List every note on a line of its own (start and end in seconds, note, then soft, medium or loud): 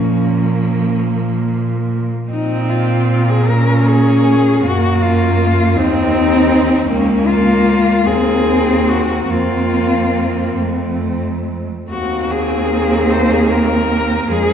0.00 2.05 A#2 soft
0.00 2.09 F3 soft
0.00 2.09 A#3 soft
0.00 0.96 C#4 soft
2.29 4.59 A#2 soft
2.29 3.51 C4 soft
2.29 2.71 D#4 medium
2.69 3.30 F4 medium
3.29 3.49 G#4 medium
3.47 4.64 A#3 soft
3.47 4.66 C#4 soft
3.47 3.88 A#4 medium
3.86 4.62 G#4 medium
4.62 5.77 F#2 medium
4.62 5.77 A#3 medium
4.62 5.79 A#3 soft
4.62 5.03 F#4 medium
5.02 5.78 F4 medium
5.76 6.89 D#2 medium
5.76 6.89 C4 medium
5.76 6.90 C4 soft
5.76 6.88 D#4 medium
6.89 8.08 C#2 medium
6.89 8.07 A#3 medium
6.89 8.03 A#3 medium
6.89 7.28 C#4 medium
7.27 8.07 F4 medium
8.06 9.30 D#2 medium
8.06 9.29 A#3 medium
8.06 9.31 C4 medium
8.06 8.90 G#4 medium
8.89 9.32 F#4 medium
9.30 10.57 F2 soft
9.30 10.61 A#3 soft
9.30 11.22 C4 soft
9.30 10.60 F4 medium
10.60 11.67 F2 soft
10.60 11.69 A3 soft
11.89 14.26 D#2 soft
11.89 14.32 A#3 medium
11.89 14.26 C4 soft
11.89 12.33 F#4 medium
12.31 13.13 G#4 medium
13.11 13.33 C5 medium
13.31 13.51 G#4 medium
13.50 14.30 A#4 medium
14.29 14.53 F2 medium
14.29 14.53 G#3 soft
14.29 14.53 C#4 medium
14.29 14.53 G#4 medium